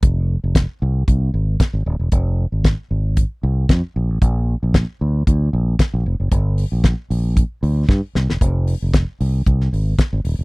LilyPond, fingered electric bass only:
\new Staff \with { instrumentName = "Fingered electric bass" } { \clef bass \time 4/4 \key f \dorian \tempo 4 = 115 f,,8. f,,8 r16 c,8 c,8 aes,,8 r16 aes,,16 ees,,16 e,,16 | f,,8. aes,,8 r16 aes,,8. r16 c,8 f,16 r16 bes,,16 a,,16 | bes,,8. bes,,8 r16 d,8 d,8 bes,,8 r16 bes,,16 f,,16 ges,,16 | g,,8. bes,,8 r16 bes,,8. r16 d,8 g,16 r16 c,16 e,,16 |
f,,8. f,,8 r16 c,8 c,8 aes,,8 r16 aes,,16 ees,,16 r16 | }